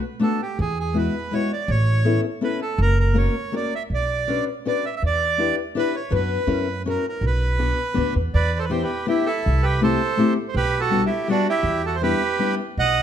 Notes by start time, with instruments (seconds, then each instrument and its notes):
0.19 steel-string acoustic guitar A3 B3 D4 F#4, accordion A4
0.42 accordion G4
0.59 upright bass E2, accordion G#4
0.80 accordion G#4
0.94 steel-string acoustic guitar G#3 B3 E4 F#4, accordion B4
1.31 steel-string acoustic guitar G#3 B3 E4 F#4, accordion C#5
1.53 accordion D5
1.68 upright bass A1, accordion C#5
2.05 steel-string acoustic guitar B3 C#4 E4 A4
2.41 steel-string acoustic guitar B3 C#4 E4 A4, accordion B4
2.62 accordion A4
2.78 upright bass F#1, accordion A#4
3.00 accordion A#4
3.13 steel-string acoustic guitar A#3 C#4 F#4 A#4
3.18 accordion C#5
3.52 steel-string acoustic guitar A#3 C#4 F#4 A#4, accordion D5
3.75 accordion E5
3.90 upright bass B1
3.94 accordion D5
4.28 steel-string acoustic guitar C#4 D4 F#4 B4
4.65 steel-string acoustic guitar C#4 D4 F#4 B4, accordion D5
4.86 accordion E5
4.96 accordion E5
5.02 upright bass E2, accordion D5
5.38 steel-string acoustic guitar D4 E4 G4 B4
5.75 steel-string acoustic guitar D4 E4 G4 B4, accordion B4
5.96 accordion C#5
6.10 upright bass F#2, steel-string acoustic guitar B3 D4 F#4 B4
6.15 accordion B4
6.47 upright bass F#2, steel-string acoustic guitar C#4 E4 F#4 A#4
6.86 steel-string acoustic guitar C#4 E4 F#4 A#4, accordion A#4
7.09 accordion A#4
7.21 upright bass B1
7.26 accordion B4
7.59 steel-string acoustic guitar B3 D4 F#4 B4
7.94 upright bass D2, steel-string acoustic guitar B3 D4 F#4 B4
8.16 upright bass E2
8.34 upright bass E2, accordion B4 D5
8.59 accordion A4 C5
8.64 accordion B4
8.70 steel-string acoustic guitar B3 D4 E4 G4, accordion G4 C5
8.83 accordion G4 B4
9.07 steel-string acoustic guitar B3 D4 E4 G4, accordion E4 G4
9.26 accordion E4 A4
9.46 upright bass C2
9.63 accordion G4 B4
9.81 steel-string acoustic guitar A3 C4 E4 G4, accordion A4 C5
10.17 steel-string acoustic guitar A3 C4 E4 G4
10.49 accordion C5
10.55 upright bass B1, accordion G4 B4
10.80 accordion F#4 A4
10.90 steel-string acoustic guitar G3 B3 D4 F#4
11.06 accordion E4 G4
11.28 steel-string acoustic guitar G3 B3 D4 F#4, accordion D4 F#4
11.49 accordion E4 G4
11.63 upright bass E2
11.85 accordion F#4 A4
11.95 accordion C5
12.02 steel-string acoustic guitar G3 B3 D4 E4, accordion G4 B4
12.39 steel-string acoustic guitar G3 B3 D4 E4
12.77 upright bass B1, accordion D#5 F#5